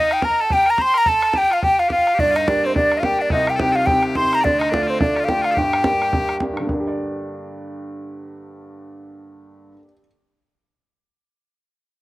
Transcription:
0.00 0.23 D#4 medium
0.00 0.14 D#5 loud
0.11 0.26 G5 medium
0.11 bodhran medium
0.22 0.40 A#4 medium
0.22 0.43 A#5 loud
0.22 bodhran medium
0.40 0.52 A4 medium
0.40 0.55 A5 loud
0.50 0.67 G4 medium
0.50 0.72 G5 loud
0.50 bodhran medium
0.66 0.79 A#4 medium
0.66 bodhran medium
0.70 0.83 A#5 loud
0.78 0.94 C5 medium
0.78 0.99 C6 loud
0.78 bodhran medium
0.94 1.07 A#4 loud
0.94 1.10 A#5 loud
0.94 bodhran medium
1.06 1.35 A4 medium
1.06 1.39 A5 loud
1.06 bodhran medium
1.22 bodhran medium
1.33 1.50 G4 medium
1.33 bodhran medium
1.38 1.55 G5 loud
1.43 bodhran soft
1.50 1.64 F4 medium
1.50 1.62 F5 loud
1.50 bodhran medium
1.63 1.79 G4 medium
1.63 1.81 G5 loud
1.63 bodhran medium
1.79 1.88 F4 medium
1.79 1.91 F5 medium
1.79 bodhran medium
1.88 2.14 F4 medium
1.88 1.92 G4 medium
1.88 2.21 F5 loud
1.88 bodhran medium
1.98 bodhran soft
2.07 bodhran medium
2.14 2.19 G4 medium
2.19 3.28 G1 medium
2.19 3.29 G2 medium
2.19 2.31 D4 medium
2.19 2.38 D5 loud
2.19 bodhran medium
2.31 2.36 F4 medium
2.36 2.48 D#4 medium
2.36 2.50 D#5 medium
2.36 bodhran medium
2.48 2.73 A#3 medium
2.48 2.64 D4 medium
2.48 2.74 D4 soft
2.48 2.74 G4 medium
2.48 2.68 D5 loud
2.48 bodhran loud
2.56 bodhran soft
2.64 2.75 C4 medium
2.64 2.75 C5 loud
2.75 3.02 A#3 soft
2.75 2.99 D4 medium
2.75 3.02 D4 soft
2.75 3.03 G4 medium
2.75 2.99 D5 loud
2.75 bodhran loud
2.92 bodhran medium
2.97 3.04 F4 medium
2.97 3.00 D#5 medium
2.97 3.07 F5 medium
3.03 3.31 A#3 medium
3.03 3.31 D4 soft
3.03 3.19 G4 medium
3.03 3.32 G4 soft
3.03 3.23 G5 loud
3.03 bodhran medium
3.12 bodhran soft
3.19 3.31 D4 medium
3.19 3.32 D5 medium
3.30 4.41 C2 medium
3.30 4.41 C3 medium
3.30 3.48 D#4 medium
3.30 3.52 D#5 loud
3.30 bodhran loud
3.47 3.56 G4 medium
3.47 3.61 G5 medium
3.47 bodhran medium
3.56 3.60 A4 medium
3.56 bodhran loud
3.60 3.87 C4 medium
3.60 3.87 D#4 soft
3.60 3.72 G4 medium
3.60 3.88 G4 medium
3.60 3.77 G5 loud
3.67 bodhran soft
3.72 3.86 F4 medium
3.72 3.76 A4 medium
3.72 3.88 F5 loud
3.86 4.14 C4 medium
3.86 4.14 D#4 soft
3.86 4.16 G4 medium
3.86 4.15 G4 medium
3.86 4.03 G5 loud
3.86 bodhran loud
4.03 bodhran medium
4.15 4.43 C4 medium
4.15 4.43 D#4 soft
4.15 4.44 G4 medium
4.15 4.41 C5 loud
4.15 4.36 C6 loud
4.15 bodhran medium
4.25 bodhran soft
4.33 4.46 A#5 loud
4.33 bodhran medium
4.41 5.53 D2 medium
4.41 5.53 D3 medium
4.41 4.59 D4 medium
4.41 4.44 D5 medium
4.41 4.61 D5 loud
4.46 bodhran medium
4.59 4.70 D#4 medium
4.59 4.75 D#5 medium
4.59 bodhran medium
4.70 4.99 A3 medium
4.70 4.83 D4 medium
4.70 4.99 D4 soft
4.70 5.00 F4 medium
4.70 bodhran loud
4.74 4.92 D5 loud
4.82 4.87 F4 medium
4.82 bodhran soft
4.87 5.00 C4 medium
4.87 5.01 C5 medium
5.00 5.27 A3 soft
5.00 5.16 D4 medium
5.00 5.27 D4 soft
5.00 5.28 F4 medium
5.00 5.26 D5 medium
5.00 bodhran loud
5.16 5.25 F4 medium
5.16 5.20 G4 medium
5.16 bodhran medium
5.24 5.42 G4 medium
5.24 5.31 F5 medium
5.28 5.56 A3 soft
5.28 5.56 D4 soft
5.28 5.56 F4 medium
5.28 5.47 G5 medium
5.28 bodhran loud
5.38 5.51 F4 medium
5.38 bodhran soft
5.44 5.60 F5 medium
5.44 bodhran medium
5.51 6.36 G4 medium
5.51 5.54 A4 medium
5.57 6.66 G1 medium
5.57 6.52 G2 medium
5.57 6.42 G5 medium
5.57 bodhran medium
5.73 bodhran medium
5.84 6.12 A#3 medium
5.84 6.12 D4 soft
5.84 6.12 G4 medium
5.84 bodhran loud
5.93 bodhran soft
6.02 bodhran medium
6.13 6.39 A#3 soft
6.13 6.40 D4 soft
6.13 6.40 G4 soft
6.13 bodhran loud
6.29 bodhran medium
6.40 6.65 A#3 soft
6.40 6.69 D4 soft
6.40 6.69 G4 medium
6.40 bodhran medium
6.50 9.71 G2 medium
6.50 bodhran soft
6.57 9.77 D3 soft
6.57 bodhran medium
6.67 9.84 A#3 soft
6.67 bodhran medium
6.73 9.91 D4 soft
6.80 9.98 G4 soft
6.87 10.05 D5 medium

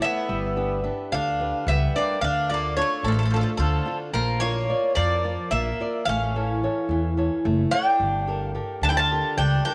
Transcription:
0.00 0.27 A3 medium
0.00 0.23 E4 soft
0.00 0.23 A4 soft
0.00 0.23 C#5 medium
0.00 0.81 E5 loud
0.04 0.82 B3 medium
0.29 0.87 G1 medium
0.29 0.83 G3 medium
0.56 0.82 D4 soft
0.56 0.82 G4 soft
0.56 0.83 B4 medium
0.84 1.28 D4 soft
0.84 1.28 G4 soft
0.84 1.28 B4 medium
1.12 1.51 D2 medium
1.12 1.66 D3 medium
1.12 1.64 D4 medium
1.12 1.68 F5 medium
1.40 1.84 D4 soft
1.40 1.84 G4 soft
1.40 1.84 B4 medium
1.67 1.86 C#2 loud
1.67 2.21 G3 medium
1.67 1.94 B3 medium
1.67 1.93 E5 medium
1.95 2.22 A#3 medium
1.95 2.17 D4 medium
1.95 2.17 G4 soft
1.95 2.18 B4 medium
1.95 2.21 D5 medium
2.21 2.79 D2 medium
2.21 2.76 D3 medium
2.21 2.49 D4 medium
2.21 2.49 F5 medium
2.50 2.76 D4 soft
2.50 2.76 F4 soft
2.50 2.77 A4 medium
2.50 2.75 D5 medium
2.54 2.78 A#3 medium
2.77 3.21 D4 soft
2.77 3.21 F4 soft
2.77 3.22 A4 medium
2.77 3.05 C#5 medium
2.82 3.05 A3 medium
3.03 3.42 A1 medium
3.03 3.58 A3 medium
3.03 3.11 A4 medium
3.08 3.13 F3 medium
3.12 3.20 F3 soft
3.12 3.18 A4 medium
3.19 3.24 A4 medium
3.23 3.28 F3 medium
3.23 3.33 A4 medium
3.30 3.35 F3 soft
3.30 3.77 D4 soft
3.30 3.77 F4 soft
3.30 3.40 A4 medium
3.30 3.78 A4 medium
3.36 3.42 F3 medium
3.41 3.50 F3 soft
3.41 3.49 A4 medium
3.57 3.78 D2 medium
3.57 4.13 D3 medium
3.57 3.98 F3 medium
3.57 3.97 A4 medium
3.86 4.08 D4 medium
3.86 4.09 F4 medium
3.86 4.09 A4 medium
4.13 4.72 A#1 medium
4.13 4.40 F3 medium
4.13 4.68 A#3 medium
4.13 4.40 A#4 medium
4.40 4.93 A#3 medium
4.40 4.69 D4 medium
4.40 4.68 F4 soft
4.40 4.68 A#4 soft
4.40 4.92 C#5 loud
4.69 5.14 F4 soft
4.69 5.14 A#4 soft
4.69 5.14 D5 medium
4.95 5.35 F2 medium
4.95 5.50 F3 medium
4.95 5.48 A#3 medium
4.95 5.50 D5 medium
5.24 5.69 F4 soft
5.24 5.68 A#4 soft
5.24 5.69 D5 medium
5.51 5.71 A#1 loud
5.51 6.05 A#3 medium
5.51 6.03 A#3 medium
5.51 6.03 E5 medium
5.80 6.02 F4 medium
5.80 6.03 A#4 soft
5.80 6.03 D5 medium
6.05 6.65 A1 medium
6.05 6.61 A3 medium
6.05 7.69 C#4 medium
6.05 7.71 F5 medium
6.36 6.62 E3 medium
6.36 6.62 A4 soft
6.36 6.63 C#5 medium
6.63 6.90 E3 medium
6.63 7.07 A4 soft
6.63 7.07 C#5 medium
6.89 7.28 E2 medium
6.89 7.16 E3 medium
7.17 7.61 E3 soft
7.17 7.61 A4 soft
7.17 7.62 C#5 medium
7.45 7.64 F#1 loud
7.45 7.98 A3 medium
7.71 8.50 D4 medium
7.71 7.94 E4 soft
7.71 7.95 A4 soft
7.71 7.95 C#5 medium
7.71 8.50 G5 medium
8.00 8.58 G1 medium
8.00 8.53 G3 medium
8.27 8.53 G4 soft
8.27 8.54 A4 soft
8.27 8.54 A#4 medium
8.54 8.99 G4 soft
8.54 8.99 A4 soft
8.54 8.99 A#4 medium
8.81 9.20 D2 medium
8.81 9.36 D3 medium
8.81 8.90 D4 medium
8.81 8.88 A5 medium
8.89 8.96 E4 medium
8.89 8.96 G5 medium
8.97 9.36 F4 medium
8.97 9.37 A5 loud
9.11 9.55 G4 soft
9.11 9.55 A4 soft
9.11 9.55 A#4 soft
9.37 9.57 C#2 medium
9.37 9.74 G3 medium
9.37 9.63 D4 medium
9.37 9.63 G5 medium
9.65 9.74 D4 medium
9.65 9.74 G4 medium
9.65 9.74 A4 soft
9.65 9.74 A#4 medium
9.65 9.74 G5 medium

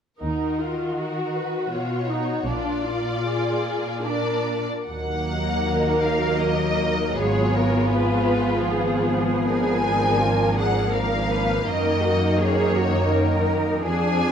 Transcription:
0.21 0.97 D#2 soft
0.21 1.71 D#3 soft
0.21 0.58 D#4 soft
0.21 2.46 F#4 soft
0.21 0.96 A#4 soft
0.61 1.00 F4 soft
0.98 1.74 F#4 soft
0.98 1.37 A#4 soft
1.37 1.75 B4 soft
1.73 2.49 B2 soft
1.73 2.10 F4 soft
1.73 2.49 C#5 soft
2.09 2.47 D#4 soft
2.46 3.20 A#1 soft
2.46 4.64 A#2 soft
2.46 2.84 D4 soft
2.46 4.03 D5 soft
2.51 3.24 F4 soft
2.86 4.04 F4 soft
3.26 4.04 G#4 soft
4.04 4.68 D4 soft
4.04 4.68 A#4 soft
4.04 4.66 D5 soft
4.87 7.15 D#2 soft
4.87 7.91 F#3 soft
4.87 7.16 A#3 soft
4.87 7.16 D#4 soft
4.87 7.16 A#4 soft
4.87 6.00 F#5 soft
5.65 7.14 A#4 soft
6.03 6.42 F5 soft
6.42 7.18 D#5 soft
7.17 11.64 G#1 soft
7.17 10.18 B3 soft
7.17 9.47 F4 soft
7.17 7.55 G#4 soft
7.17 9.42 G#4 soft
7.17 7.94 C#5 soft
7.56 7.94 A#4 soft
7.93 11.68 F3 soft
7.93 9.08 B4 soft
7.93 8.69 B4 soft
8.70 10.19 G#4 soft
9.45 11.67 D4 soft
9.45 13.80 A#4 soft
9.45 10.56 G#5 medium
10.21 13.85 A#3 soft
10.21 10.59 F4 soft
10.58 10.95 G#4 soft
10.58 10.96 F#5 soft
10.94 11.31 A#4 soft
10.94 11.66 F5 soft
11.32 11.68 B4 soft
11.66 13.85 F#2 soft
11.66 13.81 D#3 soft
11.66 13.80 D#4 soft
11.66 12.04 A#4 soft
11.66 12.40 D#5 medium
12.04 12.40 F#4 soft
12.41 12.76 G#4 soft
12.41 13.49 C#5 soft
12.76 13.12 F#4 soft
13.13 13.84 A#4 soft
13.84 14.32 F2 soft
13.84 14.32 F3 soft
13.84 14.32 D4 soft
13.84 14.32 G#4 soft
13.84 14.32 G#5 medium

